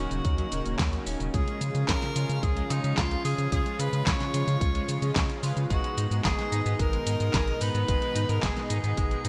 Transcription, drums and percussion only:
0.11 closed hi-hat, shaker
0.25 kick, closed hi-hat, shaker
0.38 closed hi-hat
0.52 closed hi-hat, shaker
0.66 closed hi-hat, shaker
0.79 kick, snare, clap, closed hi-hat, shaker
0.93 closed hi-hat
1.06 open hi-hat, shaker
1.20 closed hi-hat, shaker
1.34 kick, closed hi-hat, shaker
1.48 closed hi-hat
1.61 closed hi-hat, shaker
1.75 closed hi-hat, shaker
1.88 kick, snare, clap, closed hi-hat, shaker
2.02 snare, closed hi-hat
2.16 closed hi-hat, shaker
2.29 closed hi-hat, shaker
2.43 kick, closed hi-hat, shaker
2.57 closed hi-hat
2.70 closed hi-hat, shaker
2.84 closed hi-hat, shaker
2.97 kick, snare, clap, closed hi-hat, shaker
3.11 closed hi-hat
3.25 open hi-hat, shaker
3.38 closed hi-hat, shaker
3.52 kick, closed hi-hat, shaker
3.66 closed hi-hat
3.80 closed hi-hat, shaker
3.93 closed hi-hat, shaker
4.07 kick, snare, clap, closed hi-hat, shaker
4.20 snare, closed hi-hat
4.34 closed hi-hat, shaker
4.48 closed hi-hat, shaker
4.61 kick, closed hi-hat, shaker
4.75 closed hi-hat
4.89 closed hi-hat, shaker
5.02 closed hi-hat, shaker
5.16 kick, snare, clap, closed hi-hat, shaker
5.30 closed hi-hat
5.43 open hi-hat, shaker
5.57 closed hi-hat, shaker
5.70 kick, closed hi-hat, shaker
5.84 closed hi-hat
5.98 closed hi-hat, shaker
6.11 closed hi-hat, shaker
6.25 kick, snare, clap, closed hi-hat, shaker
6.39 snare, closed hi-hat
6.52 closed hi-hat, shaker
6.66 closed hi-hat, shaker
6.79 kick, closed hi-hat, shaker
6.93 closed hi-hat
7.07 closed hi-hat, shaker
7.20 closed hi-hat, shaker
7.34 kick, snare, clap, closed hi-hat, shaker
7.48 closed hi-hat
7.61 open hi-hat, shaker
7.75 closed hi-hat, shaker
7.88 kick, closed hi-hat, shaker
8.02 closed hi-hat
8.16 closed hi-hat, shaker
8.29 closed hi-hat, shaker
8.43 kick, snare, clap, closed hi-hat, shaker
8.57 snare, closed hi-hat
8.70 closed hi-hat, shaker
8.84 closed hi-hat, shaker
8.97 kick, closed hi-hat, shaker
9.11 closed hi-hat
9.25 closed hi-hat, shaker

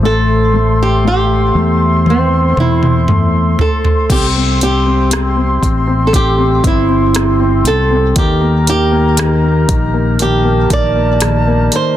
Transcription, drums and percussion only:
2.06 high tom
2.57 mid tom
2.83 mid tom
3.08 mid tom
3.59 floor tom
3.85 floor tom
4.10 kick, closed hi-hat, crash
4.61 closed hi-hat
5.11 cross-stick, closed hi-hat
5.63 kick, closed hi-hat
6.13 kick, closed hi-hat
6.64 kick, closed hi-hat
7.15 cross-stick, closed hi-hat
7.65 closed hi-hat
8.16 kick, closed hi-hat
8.67 closed hi-hat
9.17 cross-stick, closed hi-hat
9.69 kick, closed hi-hat
10.19 closed hi-hat
10.70 kick, closed hi-hat
11.20 cross-stick, closed hi-hat
11.72 closed hi-hat

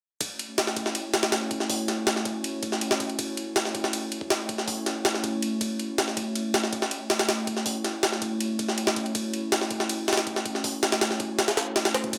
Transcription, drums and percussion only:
0.21 kick, ride
0.39 ride
0.58 snare, ride
0.67 snare
0.77 kick, ride
0.86 snare
0.95 ride
1.14 snare, ride
1.23 snare, ride
1.32 snare, ride
1.51 kick, ride
1.60 snare
1.70 kick, open hi-hat
1.88 snare, ride
2.07 snare, ride
2.16 snare
2.25 kick, ride
2.44 ride
2.63 kick, ride
2.72 snare
2.81 ride
2.91 snare
3.00 kick, ride
3.10 ride
3.19 kick, ride
3.37 ride
3.56 snare, ride
3.65 snare
3.75 kick, ride
3.84 snare
3.93 ride
4.12 ride
4.21 kick
4.30 snare, ride
4.49 kick, ride
4.58 snare
4.68 kick, open hi-hat
4.86 snare, ride
5.05 snare, ride
5.14 snare
5.24 kick, ride
5.42 ride
5.61 kick, ride
5.79 ride
5.98 snare, ride
6.08 snare
6.17 kick, ride
6.35 ride
6.54 snare, ride
6.64 snare
6.73 kick, ride
6.82 snare
6.91 ride
7.10 snare, ride
7.19 snare, ride
7.29 snare, ride
7.47 kick, ride
7.57 snare
7.66 kick, open hi-hat
7.84 snare, ride
8.03 snare, ride
8.12 snare
8.22 kick, ride
8.40 ride
8.59 kick, ride
8.69 snare
8.78 ride
8.87 snare
8.96 kick, ride
9.06 ride
9.15 kick, ride
9.34 ride
9.52 snare, ride
9.61 snare
9.71 kick, ride
9.80 snare
9.89 ride
10.08 snare, ride
10.13 snare, ride
10.17 snare, ride
10.27 kick, ride
10.36 snare
10.45 kick, ride
10.55 snare
10.64 kick, open hi-hat
10.83 snare, ride
10.92 snare, ride
11.01 snare, ride
11.11 snare
11.20 kick, ride
11.39 snare, ride
11.48 snare, ride
11.57 snare, ride
11.76 snare, ride
11.85 snare, ride
11.94 snare, ride
12.04 kick, ride
12.13 kick, ride

